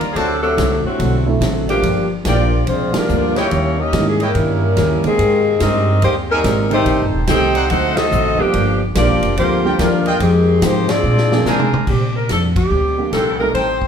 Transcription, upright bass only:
0.00 muted upright bass stroke soft
0.15 0.56 D2 medium
0.57 0.82 C2 medium
0.84 muted upright bass stroke soft
1.00 1.40 B1 medium
1.41 1.82 A1 medium
1.82 2.23 G1 medium
2.25 2.66 A#1 medium
2.67 2.92 C2 medium
2.95 muted upright bass stroke soft
3.09 3.50 D2 medium
3.52 3.92 D#2 medium
3.93 4.33 G#2 medium
4.35 4.76 G2 medium
4.77 5.02 D#2 medium
5.04 muted upright bass stroke soft
5.19 5.59 G#2 medium
5.61 6.01 G2 medium
6.02 6.43 D#2 medium
6.44 6.85 G#1 medium
6.86 7.00 A1 medium
7.00 7.13 G1 medium
7.14 7.27 D#1 medium
7.28 7.69 C2 medium
7.70 8.11 D2 medium
8.12 8.37 A1 medium
8.40 muted upright bass stroke soft
8.54 8.94 G1 medium
8.96 9.09 A#1 medium
9.09 9.22 G1 medium
9.23 9.36 F1 medium
9.37 9.77 D2 medium
9.79 10.19 D#2 medium
10.20 10.61 F2 medium
10.61 11.02 G#2 medium
11.04 11.44 A#2 medium
11.45 11.70 C3 medium
11.72 muted upright bass stroke soft
11.87 12.28 A#2 medium
12.29 12.70 F2 medium
12.71 13.11 D2 medium
13.13 13.53 C2 medium
13.54 13.88 A1 medium

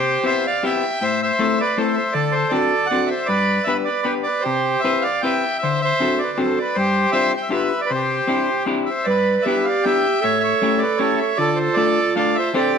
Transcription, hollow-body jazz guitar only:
0.00 0.16 C3 medium
0.23 0.45 B3 medium
0.23 0.45 C4 medium
0.23 0.45 E4 soft
0.23 0.45 G4 medium
0.63 0.84 B3 medium
0.63 0.84 C4 medium
0.63 0.84 E4 medium
0.63 0.84 G4 medium
1.01 1.31 A2 medium
1.39 1.60 A3 medium
1.39 1.60 C4 medium
1.39 1.60 E4 medium
1.39 1.60 A4 medium
1.77 1.98 A3 medium
1.77 1.98 C4 soft
1.77 1.98 E4 medium
1.77 1.98 A4 medium
2.15 2.43 D3 medium
2.51 2.72 C4 medium
2.51 2.73 D4 medium
2.51 2.73 F#4 medium
2.51 2.73 A4 medium
2.91 3.12 C4 medium
2.91 3.12 D4 medium
2.91 3.12 F#4 medium
2.91 3.12 A4 medium
3.29 3.58 G2 medium
3.67 3.88 B3 medium
3.67 3.88 D4 medium
3.67 3.88 G4 soft
3.67 3.88 B4 medium
4.05 4.26 B3 medium
4.05 4.26 D4 soft
4.05 4.27 G4 medium
4.05 4.27 B4 medium
4.46 4.75 C3 medium
4.84 5.05 C4 medium
4.84 5.05 E4 medium
4.84 5.05 G4 soft
4.84 5.05 B4 medium
5.23 5.44 C4 medium
5.23 5.44 E4 soft
5.23 5.44 G4 soft
5.23 5.44 B4 medium
5.63 5.91 D3 medium
6.00 6.20 C4 medium
6.00 6.21 D4 medium
6.00 6.21 F#4 medium
6.00 6.21 A4 medium
6.38 6.58 C4 medium
6.38 6.58 D4 medium
6.38 6.58 F#4 medium
6.38 6.58 A4 medium
6.76 7.05 G2 medium
7.13 7.34 C4 medium
7.13 7.34 D4 medium
7.13 7.34 F4 medium
7.13 7.34 G4 medium
7.50 7.71 B3 medium
7.50 7.71 D4 medium
7.50 7.72 F4 medium
7.50 7.72 G4 medium
7.91 8.20 C3 medium
8.27 8.49 C4 medium
8.27 8.49 D4 medium
8.27 8.49 E4 medium
8.27 8.49 G4 medium
8.66 8.88 C4 medium
8.66 8.88 D4 medium
8.66 8.88 E4 medium
8.66 8.88 G4 medium
9.07 9.36 G2 medium
9.46 9.67 B3 medium
9.46 9.67 D4 medium
9.46 9.67 E4 medium
9.46 9.67 G4 medium
9.85 10.06 B3 medium
9.85 10.06 D4 medium
9.85 10.06 E4 soft
9.85 10.06 G4 medium
10.24 10.53 A2 medium
10.62 10.83 A3 medium
10.62 10.82 C#4 medium
10.62 10.83 E4 soft
10.62 10.83 G4 medium
10.99 11.20 A3 medium
10.99 11.20 C#4 medium
10.99 11.21 E4 soft
10.99 11.21 G4 medium
11.38 11.68 D3 medium
11.76 11.98 A3 medium
11.76 11.98 D4 medium
11.76 11.98 F4 medium
11.76 11.98 A4 medium
12.16 12.36 A3 medium
12.16 12.37 D4 medium
12.16 12.37 F4 soft
12.16 12.37 A4 medium
12.54 12.78 C4 medium
12.54 12.78 D4 medium
12.54 12.78 G4 medium
12.54 12.78 C5 medium

